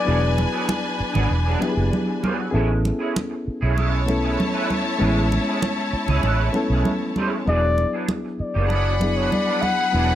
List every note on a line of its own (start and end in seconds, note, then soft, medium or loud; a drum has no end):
0.00 0.05 F#3 medium
0.00 0.06 B3 medium
0.00 0.07 D4 medium
0.00 2.50 D4 medium
0.00 0.07 E4 medium
0.00 2.56 F#4 medium
0.00 0.08 G#4 medium
0.00 2.50 B4 medium
0.00 0.40 D5 loud
0.00 2.50 G#5 medium
0.05 0.44 E1 loud
0.05 1.18 F#3 medium
0.05 0.28 F#3 medium
0.05 1.18 B3 medium
0.05 0.21 B3 medium
0.05 1.19 D4 medium
0.05 0.21 D4 medium
0.05 1.19 E4 medium
0.05 0.20 G#4 medium
0.05 1.19 G#4 medium
0.21 muted clean electric guitar stroke soft
0.36 muted clean electric guitar stroke soft
0.36 muted conga soft
0.52 0.66 F#3 soft
0.52 0.67 B3 soft
0.52 0.67 D4 medium
0.52 0.68 G#4 medium
0.67 muted clean electric guitar stroke soft
0.67 high conga medium
0.83 muted clean electric guitar stroke soft
1.00 muted fingered electric bass stroke soft
1.13 1.28 G#1 medium
1.13 1.28 F#3 medium
1.13 1.28 B3 medium
1.13 1.29 D4 medium
1.13 1.29 G#4 medium
1.13 low conga medium
1.29 1.55 E1 medium
1.29 muted clean electric guitar stroke soft
1.46 1.59 F#3 medium
1.46 1.60 B3 medium
1.46 1.60 D4 medium
1.46 1.61 G#4 medium
1.59 2.44 F#3 medium
1.59 2.45 B3 medium
1.59 2.45 D4 medium
1.59 2.46 E4 medium
1.59 1.69 G4 medium
1.59 muted clean electric guitar stroke soft
1.59 muted conga soft
1.69 2.49 G#4 medium
1.76 1.89 F#1 medium
1.76 muted clean electric guitar stroke soft
1.93 high conga medium
2.07 muted clean electric guitar stroke soft
2.23 2.45 F#3 medium
2.23 2.39 B3 medium
2.23 2.38 D4 medium
2.23 2.37 G#4 medium
2.23 high conga medium
2.38 muted clean electric guitar stroke soft
2.51 2.90 A1 loud
2.51 2.75 G#3 medium
2.51 3.65 B3 medium
2.51 3.65 C#4 medium
2.51 2.70 C#4 medium
2.51 3.65 E4 medium
2.51 2.69 E4 medium
2.51 3.64 G#4 medium
2.51 3.66 A4 medium
2.55 2.69 G#4 medium
2.70 muted clean electric guitar stroke soft
2.85 muted clean electric guitar stroke soft
2.85 muted conga soft
2.99 3.14 G#3 medium
2.99 3.15 C#4 medium
2.99 3.15 E4 medium
2.99 3.15 G#4 medium
3.15 muted clean electric guitar stroke soft
3.15 high conga medium
3.30 muted clean electric guitar stroke soft
3.48 muted fingered electric bass stroke soft
3.61 4.36 B1 medium
3.61 3.76 G#3 medium
3.61 3.76 C#4 medium
3.61 3.77 E4 medium
3.61 3.77 G#4 medium
3.76 3.99 G#3 medium
3.76 3.99 C#4 medium
3.76 7.43 E4 medium
3.76 3.99 E4 medium
3.76 3.99 G#4 medium
3.76 7.43 C#5 medium
3.76 7.43 A5 medium
3.76 muted conga soft
4.06 4.91 A3 medium
4.06 4.91 B3 medium
4.06 4.92 C#4 medium
4.06 4.92 E4 medium
4.06 4.93 A4 medium
4.06 muted clean electric guitar stroke soft
4.06 muted conga soft
4.23 4.37 G#3 soft
4.23 4.38 C#4 soft
4.23 4.38 E4 soft
4.23 4.38 G#4 medium
4.39 muted clean electric guitar stroke soft
4.39 high conga medium
4.54 4.68 G#3 medium
4.54 4.69 C#4 medium
4.54 4.69 E4 medium
4.54 4.70 B4 medium
4.70 muted clean electric guitar stroke soft
4.70 high conga medium
4.85 muted clean electric guitar stroke soft
4.98 5.37 A1 loud
4.98 6.11 G#3 medium
4.98 5.22 G#3 medium
4.98 6.11 B3 medium
4.98 6.12 C#4 medium
4.98 5.16 C#4 medium
4.98 6.12 E4 medium
4.98 5.15 E4 medium
4.98 5.15 G#4 medium
5.16 muted clean electric guitar stroke soft
5.31 muted clean electric guitar stroke soft
5.31 muted conga soft
5.47 5.61 G#3 soft
5.47 5.62 C#4 soft
5.47 5.62 E4 medium
5.47 5.62 G#4 medium
5.62 muted clean electric guitar stroke soft
5.62 high conga medium
5.78 muted clean electric guitar stroke soft
5.93 muted fingered electric bass stroke soft
6.08 6.20 C#2 medium
6.08 6.23 G#3 medium
6.08 6.24 C#4 medium
6.08 6.24 E4 medium
6.08 6.26 G#4 medium
6.08 low conga medium
6.23 6.48 A1 medium
6.23 6.46 G#3 medium
6.23 6.46 C#4 medium
6.23 6.46 E4 medium
6.23 6.47 B4 medium
6.23 muted conga soft
6.52 7.37 A3 medium
6.52 7.38 B3 medium
6.52 7.38 C#4 medium
6.52 7.38 E4 medium
6.52 7.39 A4 medium
6.52 muted clean electric guitar stroke soft
6.52 muted conga soft
6.70 6.82 B1 medium
6.70 6.89 G#3 soft
6.70 6.88 C#4 soft
6.70 6.88 E4 soft
6.70 6.88 G#4 medium
6.85 high conga medium
7.01 muted clean electric guitar stroke soft
7.16 7.38 G#3 medium
7.16 7.33 C#4 medium
7.16 7.33 E4 medium
7.16 7.32 G#4 medium
7.16 high conga medium
7.33 muted clean electric guitar stroke soft
7.46 7.83 E1 loud
7.46 8.58 F#3 medium
7.46 7.69 F#3 medium
7.46 8.58 B3 medium
7.46 7.62 B3 medium
7.46 8.59 D4 medium
7.46 7.62 D4 medium
7.46 8.59 E4 medium
7.46 8.60 G#4 medium
7.46 7.61 G#4 medium
7.46 8.06 D5 loud
7.62 muted clean electric guitar stroke soft
7.78 muted clean electric guitar stroke soft
7.78 muted conga soft
7.93 8.07 F#3 soft
7.93 8.08 B3 soft
7.93 8.09 D4 medium
7.93 8.09 G#4 medium
8.09 muted clean electric guitar stroke soft
8.09 high conga medium
8.25 muted clean electric guitar stroke soft
8.40 9.18 D5 medium
8.40 muted fingered electric bass stroke soft
8.54 9.29 F#1 medium
8.54 8.69 F#3 medium
8.54 8.69 B3 medium
8.54 8.70 D4 medium
8.54 8.71 G#4 medium
8.69 8.92 F#3 medium
8.69 8.92 B3 medium
8.69 8.93 D4 medium
8.69 10.15 G#4 medium
8.69 8.93 G#4 medium
8.69 10.15 F#5 medium
8.69 10.15 B5 medium
8.69 muted conga soft
9.00 9.84 F#3 medium
9.00 9.85 B3 medium
9.00 9.85 D4 medium
9.00 9.85 E4 medium
9.00 9.86 G#4 medium
9.00 muted clean electric guitar stroke soft
9.00 muted conga soft
9.17 9.31 F#3 soft
9.17 9.32 B3 soft
9.17 9.32 D4 soft
9.17 9.33 G#4 soft
9.17 9.34 C#5 medium
9.32 9.64 D5 medium
9.32 muted clean electric guitar stroke soft
9.32 high conga medium
9.48 9.62 F#3 medium
9.48 9.63 B3 medium
9.48 9.63 D4 medium
9.48 9.64 B4 medium
9.62 10.15 F#5 loud
9.62 muted clean electric guitar stroke soft
9.62 high conga medium
9.79 muted clean electric guitar stroke soft
9.92 10.15 E1 loud
9.92 10.15 F#3 medium
9.92 10.15 B3 medium
9.92 10.10 B3 medium
9.92 10.15 D4 medium
9.92 10.10 D4 medium
9.92 10.15 E4 medium
9.92 10.09 G#4 medium
9.92 10.15 B4 medium
10.10 muted clean electric guitar stroke soft